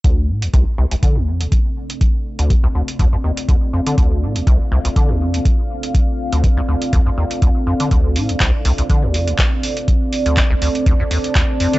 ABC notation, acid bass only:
X:1
M:4/4
L:1/16
Q:"Swing 16ths" 1/4=122
K:Dm
V:1 name="Acid bass" clef=bass
D,,2 A,, D,, C,, z C,, C,, D, D,, F,, D,, z4 | z3 D,, F,, C,, D,, z D,, F,, _E,, z D,, z F,, D, | D,,2 A,, D,, C,, z C,, C,, D, D,, F,, D,, z4 | z3 D,, F,, C,, D,, z D,, F,, _E,, z D,, z F,, D, |
D,,2 A,, D,, C,, z C,, C,, D, D,, F,, D,, z4 | z3 D,, F,, C,, D,, z D,, F,, _E,, z D,, z F,, D, |]